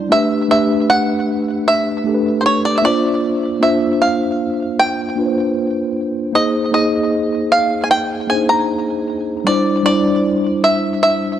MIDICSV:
0, 0, Header, 1, 3, 480
1, 0, Start_track
1, 0, Tempo, 779221
1, 66, Time_signature, 4, 2, 24, 8
1, 7020, End_track
2, 0, Start_track
2, 0, Title_t, "Five-string banjo"
2, 0, Program_c, 0, 105
2, 0, Note_on_c, 0, 72, 92
2, 73, Note_on_c, 0, 76, 106
2, 84, Note_off_c, 0, 72, 0
2, 306, Note_off_c, 0, 76, 0
2, 314, Note_on_c, 0, 76, 98
2, 550, Note_off_c, 0, 76, 0
2, 552, Note_on_c, 0, 78, 103
2, 1030, Note_off_c, 0, 78, 0
2, 1033, Note_on_c, 0, 76, 106
2, 1455, Note_off_c, 0, 76, 0
2, 1483, Note_on_c, 0, 72, 62
2, 1510, Note_off_c, 0, 72, 0
2, 1514, Note_on_c, 0, 73, 89
2, 1630, Note_off_c, 0, 73, 0
2, 1633, Note_on_c, 0, 74, 87
2, 1708, Note_off_c, 0, 74, 0
2, 1710, Note_on_c, 0, 76, 74
2, 1749, Note_off_c, 0, 76, 0
2, 1754, Note_on_c, 0, 74, 100
2, 2234, Note_on_c, 0, 76, 93
2, 2244, Note_off_c, 0, 74, 0
2, 2471, Note_off_c, 0, 76, 0
2, 2474, Note_on_c, 0, 77, 86
2, 2951, Note_off_c, 0, 77, 0
2, 2954, Note_on_c, 0, 79, 94
2, 3645, Note_off_c, 0, 79, 0
2, 3913, Note_on_c, 0, 75, 92
2, 4145, Note_off_c, 0, 75, 0
2, 4152, Note_on_c, 0, 75, 88
2, 4629, Note_off_c, 0, 75, 0
2, 4631, Note_on_c, 0, 77, 88
2, 4825, Note_off_c, 0, 77, 0
2, 4827, Note_on_c, 0, 80, 74
2, 4868, Note_off_c, 0, 80, 0
2, 4871, Note_on_c, 0, 79, 111
2, 5108, Note_off_c, 0, 79, 0
2, 5110, Note_on_c, 0, 80, 100
2, 5227, Note_off_c, 0, 80, 0
2, 5230, Note_on_c, 0, 82, 92
2, 5563, Note_off_c, 0, 82, 0
2, 5831, Note_on_c, 0, 74, 98
2, 6064, Note_off_c, 0, 74, 0
2, 6072, Note_on_c, 0, 74, 94
2, 6553, Note_on_c, 0, 76, 92
2, 6563, Note_off_c, 0, 74, 0
2, 6786, Note_off_c, 0, 76, 0
2, 6793, Note_on_c, 0, 76, 105
2, 7013, Note_off_c, 0, 76, 0
2, 7020, End_track
3, 0, Start_track
3, 0, Title_t, "Tine electric piano"
3, 0, Program_c, 1, 4
3, 0, Control_c, 1, 64, 127
3, 0, Note_on_c, 1, 55, 71
3, 0, Note_on_c, 1, 62, 64
3, 0, Note_on_c, 1, 64, 66
3, 0, Note_on_c, 1, 74, 79
3, 56, Note_on_c, 1, 57, 76
3, 64, Note_off_c, 1, 62, 0
3, 64, Note_on_c, 1, 62, 72
3, 72, Note_on_c, 1, 67, 72
3, 73, Control_c, 1, 64, 0
3, 76, Note_off_c, 1, 55, 0
3, 76, Note_off_c, 1, 74, 0
3, 78, Note_off_c, 1, 64, 0
3, 80, Note_on_c, 1, 71, 90
3, 172, Control_c, 1, 64, 127
3, 230, Note_off_c, 1, 57, 0
3, 234, Note_off_c, 1, 62, 0
3, 238, Note_off_c, 1, 67, 0
3, 242, Note_off_c, 1, 71, 0
3, 297, Note_on_c, 1, 57, 76
3, 304, Note_on_c, 1, 62, 70
3, 312, Note_on_c, 1, 67, 68
3, 320, Note_on_c, 1, 71, 90
3, 977, Note_off_c, 1, 57, 0
3, 980, Note_off_c, 1, 62, 0
3, 984, Note_off_c, 1, 67, 0
3, 988, Note_off_c, 1, 71, 0
3, 1257, Note_on_c, 1, 57, 68
3, 1266, Note_on_c, 1, 62, 62
3, 1274, Note_on_c, 1, 67, 65
3, 1281, Note_on_c, 1, 69, 62
3, 1314, Note_off_c, 1, 69, 0
3, 1321, Note_on_c, 1, 71, 79
3, 1737, Note_off_c, 1, 62, 0
3, 1737, Note_on_c, 1, 58, 80
3, 1742, Note_off_c, 1, 57, 0
3, 1745, Note_on_c, 1, 62, 68
3, 1750, Note_off_c, 1, 67, 0
3, 1753, Note_on_c, 1, 65, 74
3, 1754, Control_c, 1, 64, 0
3, 1761, Note_on_c, 1, 72, 90
3, 1773, Note_off_c, 1, 71, 0
3, 1872, Control_c, 1, 64, 127
3, 2125, Note_off_c, 1, 58, 0
3, 2129, Note_off_c, 1, 62, 0
3, 2134, Note_off_c, 1, 65, 0
3, 2137, Note_off_c, 1, 72, 0
3, 2216, Note_on_c, 1, 58, 77
3, 2225, Note_on_c, 1, 62, 70
3, 2232, Note_on_c, 1, 65, 68
3, 2240, Note_on_c, 1, 72, 84
3, 2897, Note_off_c, 1, 58, 0
3, 2901, Note_off_c, 1, 62, 0
3, 2905, Note_off_c, 1, 65, 0
3, 2908, Note_off_c, 1, 72, 0
3, 3177, Note_on_c, 1, 58, 68
3, 3185, Note_on_c, 1, 62, 60
3, 3193, Note_on_c, 1, 65, 62
3, 3201, Note_on_c, 1, 71, 62
3, 3233, Note_off_c, 1, 71, 0
3, 3242, Note_on_c, 1, 72, 76
3, 3688, Note_off_c, 1, 58, 0
3, 3692, Note_off_c, 1, 62, 0
3, 3696, Note_off_c, 1, 65, 0
3, 3720, Note_off_c, 1, 72, 0
3, 3897, Note_on_c, 1, 58, 75
3, 3905, Note_on_c, 1, 63, 72
3, 3913, Note_on_c, 1, 68, 67
3, 3915, Control_c, 1, 64, 0
3, 3920, Note_on_c, 1, 72, 88
3, 4029, Control_c, 1, 64, 127
3, 4070, Note_off_c, 1, 58, 0
3, 4074, Note_off_c, 1, 63, 0
3, 4078, Note_off_c, 1, 68, 0
3, 4082, Note_off_c, 1, 72, 0
3, 4137, Note_on_c, 1, 58, 73
3, 4145, Note_on_c, 1, 63, 69
3, 4152, Note_on_c, 1, 68, 71
3, 4160, Note_on_c, 1, 75, 81
3, 4817, Note_off_c, 1, 58, 0
3, 4821, Note_off_c, 1, 63, 0
3, 4825, Note_off_c, 1, 68, 0
3, 4829, Note_off_c, 1, 75, 0
3, 5095, Note_on_c, 1, 58, 66
3, 5103, Note_on_c, 1, 62, 50
3, 5111, Note_on_c, 1, 68, 66
3, 5119, Note_on_c, 1, 72, 73
3, 5143, Note_on_c, 1, 63, 66
3, 5144, Note_off_c, 1, 62, 0
3, 5607, Note_off_c, 1, 58, 0
3, 5615, Note_off_c, 1, 68, 0
3, 5619, Note_off_c, 1, 72, 0
3, 5631, Note_off_c, 1, 63, 0
3, 5817, Note_on_c, 1, 55, 75
3, 5824, Note_on_c, 1, 62, 70
3, 5832, Note_on_c, 1, 64, 74
3, 5834, Control_c, 1, 64, 0
3, 5839, Note_on_c, 1, 72, 87
3, 5953, Control_c, 1, 64, 127
3, 5990, Note_off_c, 1, 55, 0
3, 5994, Note_off_c, 1, 62, 0
3, 5998, Note_off_c, 1, 64, 0
3, 6002, Note_off_c, 1, 72, 0
3, 6056, Note_on_c, 1, 55, 76
3, 6064, Note_on_c, 1, 62, 72
3, 6072, Note_on_c, 1, 64, 71
3, 6080, Note_on_c, 1, 72, 80
3, 6736, Note_off_c, 1, 55, 0
3, 6740, Note_off_c, 1, 62, 0
3, 6745, Note_off_c, 1, 64, 0
3, 6748, Note_off_c, 1, 72, 0
3, 7020, End_track
0, 0, End_of_file